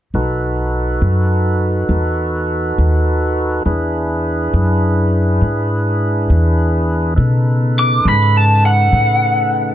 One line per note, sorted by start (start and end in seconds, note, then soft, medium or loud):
0.14 0.99 B1 medium
0.14 3.63 D#4 soft
0.14 3.63 F#4 soft
0.14 3.63 A4 soft
0.14 3.63 B4 soft
1.02 1.87 F#2 medium
1.89 2.75 E2 medium
2.78 3.64 D#2 medium
3.66 4.51 E2 medium
3.66 7.14 D4 soft
3.66 7.14 E4 soft
3.66 7.14 G#4 medium
3.66 7.14 B4 soft
4.54 5.39 F#2 medium
5.41 6.27 G#2 medium
6.30 7.15 E2 medium
7.16 8.03 B2 medium
7.16 9.75 C#3 medium
7.16 9.75 D#4 medium
7.16 9.75 A4 medium
7.16 9.75 B4 medium
7.79 8.06 D6 medium
8.05 8.90 G#2 medium
8.05 8.35 B5 medium
8.37 8.64 A5 medium
8.66 9.75 F#5 medium
8.93 9.75 A2 medium